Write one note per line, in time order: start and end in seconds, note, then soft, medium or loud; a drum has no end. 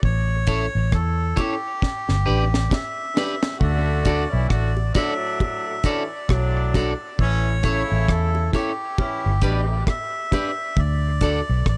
0.03 0.67 A1 loud
0.03 0.96 C#5 loud
0.03 kick loud
0.47 0.67 C#4 medium
0.47 0.65 E4 medium
0.47 0.67 E4 medium
0.47 0.65 A4 medium
0.47 0.68 A4 loud
0.47 0.65 C#5 medium
0.47 kick medium
0.47 closed hi-hat medium
0.75 0.91 A1 medium
0.92 1.33 E2 medium
0.92 1.39 A4 medium
0.92 kick loud
0.92 cross-stick loud
1.36 1.56 C#4 medium
1.36 1.54 E4 medium
1.36 1.57 E4 medium
1.36 2.76 G4 loud
1.36 1.54 A4 medium
1.36 1.57 A4 loud
1.36 1.55 C#5 medium
1.36 kick medium
1.36 closed hi-hat medium
1.36 high bongo medium
1.82 kick loud
1.82 snare medium
2.08 2.25 G1 medium
2.08 2.15 G4 soft
2.08 2.15 B4 soft
2.08 snare soft
2.26 2.67 A1 medium
2.26 2.46 D4 medium
2.26 2.44 G4 medium
2.26 2.46 G4 medium
2.26 2.44 B4 medium
2.26 2.47 B4 loud
2.26 2.44 D5 medium
2.54 snare medium
2.71 3.58 E5 loud
2.71 kick loud
2.71 snare medium
2.71 high bongo medium
3.16 3.36 D4 medium
3.16 3.34 G4 medium
3.16 3.36 G4 medium
3.16 3.34 B4 medium
3.16 3.36 B4 loud
3.16 3.34 D5 medium
3.16 snare loud
3.16 high bongo medium
3.16 low bongo medium
3.43 snare medium
3.60 4.24 D2 loud
3.60 4.27 D3 loud
3.60 4.27 A3 loud
3.60 4.27 F#4 loud
3.60 4.47 D5 loud
3.60 kick loud
4.05 4.25 D4 medium
4.05 4.25 F#4 medium
4.05 4.23 F#4 medium
4.05 4.25 A4 medium
4.05 4.24 A4 medium
4.05 4.24 D5 medium
4.05 kick medium
4.05 closed hi-hat medium
4.05 high bongo soft
4.30 4.49 B1 medium
4.30 4.45 E3 medium
4.30 4.46 C#4 medium
4.30 4.46 E4 medium
4.49 4.91 A1 medium
4.49 4.70 D3 medium
4.49 4.71 A3 medium
4.49 4.71 F#4 loud
4.49 4.93 D5 loud
4.49 kick loud
4.49 cross-stick loud
4.77 high bongo soft
4.94 5.80 A2 medium
4.94 5.80 F#3 medium
4.94 5.80 D4 loud
4.94 5.14 D4 medium
4.94 5.12 F#4 medium
4.94 5.15 F#4 medium
4.94 5.13 A4 medium
4.94 5.15 A4 loud
4.94 5.13 D5 loud
4.94 5.88 E5 loud
4.94 kick medium
4.94 closed hi-hat medium
4.94 high bongo medium
5.40 kick loud
5.40 high bongo medium
5.66 5.74 F#4 soft
5.66 5.74 A4 soft
5.84 6.06 E3 medium
5.84 6.05 C#4 medium
5.84 6.04 D4 medium
5.84 6.06 E4 medium
5.84 6.04 F#4 medium
5.84 6.02 F#4 medium
5.84 6.04 A4 loud
5.84 6.03 A4 medium
5.84 6.03 D5 medium
5.84 6.75 D5 loud
5.84 kick medium
5.84 closed hi-hat medium
6.29 6.93 B1 medium
6.29 6.96 A2 loud
6.29 6.96 F#3 loud
6.29 6.96 D4 loud
6.29 kick loud
6.29 cross-stick loud
6.29 high bongo medium
6.57 muted clean electric guitar stroke soft
6.74 6.93 D4 medium
6.74 6.94 F#4 medium
6.74 6.92 F#4 medium
6.74 6.94 A4 medium
6.74 6.92 A4 medium
6.74 7.21 D5 medium
6.74 6.93 D5 medium
6.74 kick medium
6.74 closed hi-hat medium
6.74 high bongo medium
6.74 low bongo medium
7.19 7.83 A1 loud
7.19 7.56 A2 loud
7.19 7.55 E3 loud
7.19 7.56 C#4 loud
7.19 8.12 C#5 loud
7.19 kick loud
7.63 8.50 C#3 loud
7.63 8.49 A3 loud
7.63 7.83 C#4 medium
7.63 7.83 E4 medium
7.63 7.81 E4 medium
7.63 8.49 E4 loud
7.63 7.83 A4 loud
7.63 7.82 A4 medium
7.63 7.82 C#5 loud
7.63 kick medium
7.63 closed hi-hat medium
7.63 high bongo soft
7.92 8.08 A1 medium
8.09 8.49 E2 medium
8.09 8.51 A4 medium
8.09 kick loud
8.09 cross-stick loud
8.35 high bongo soft
8.52 8.72 C#4 medium
8.52 8.73 E4 medium
8.52 8.71 E4 medium
8.52 9.84 G4 loud
8.52 8.73 A4 loud
8.52 8.71 A4 medium
8.52 8.71 C#5 medium
8.52 kick medium
8.52 closed hi-hat medium
8.52 high bongo medium
8.98 9.34 E3 medium
8.98 9.35 C#4 medium
8.98 9.34 E4 loud
8.98 kick loud
8.98 high bongo medium
9.24 9.42 G1 loud
9.24 9.32 G4 soft
9.24 9.32 B4 soft
9.42 9.83 A1 medium
9.42 9.80 B2 medium
9.42 9.80 G3 medium
9.42 9.62 D4 medium
9.42 9.79 D4 loud
9.42 9.60 G4 medium
9.42 9.62 G4 medium
9.42 9.60 B4 medium
9.42 9.63 B4 loud
9.42 9.60 D5 medium
9.42 kick medium
9.42 closed hi-hat medium
9.87 10.81 E5 loud
9.87 kick loud
9.87 cross-stick loud
9.87 high bongo medium
10.32 10.51 D4 medium
10.32 10.52 G4 medium
10.32 10.50 G4 medium
10.32 10.52 B4 loud
10.32 10.50 B4 medium
10.32 10.51 D5 medium
10.32 kick medium
10.32 closed hi-hat medium
10.32 high bongo medium
10.32 low bongo medium
10.77 11.40 D2 loud
10.77 11.67 D5 loud
10.77 kick loud
11.21 11.41 D4 medium
11.21 11.41 F#4 medium
11.21 11.39 F#4 medium
11.21 11.41 A4 loud
11.21 11.40 A4 medium
11.21 11.40 D5 medium
11.21 kick medium
11.21 closed hi-hat medium
11.21 high bongo soft
11.49 11.65 B1 medium
11.66 11.77 A1 medium
11.66 11.77 D5 loud
11.66 kick loud
11.66 cross-stick loud